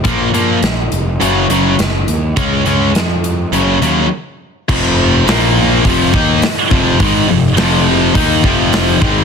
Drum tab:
CC |--------|--------|x-------|--------|
HH |xxxxxxxx|xxxxxx--|--o-o-o-|o-o-o-o-|
SD |--o---o-|--o-----|--o---o-|--o---o-|
BD |o-------|o-------|o---oo-o|o---oo-o|